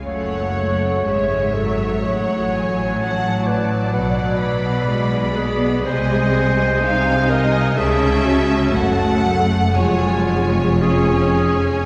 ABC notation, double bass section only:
X:1
M:4/4
L:1/8
Q:1/4=62
K:F#m
V:1 name="Double bass section" clef=bass
F,,,2 G,,,2 A,,,4 | B,,,4 ^B,,,4 | C,,2 F,,,2 ^E,,,4 |]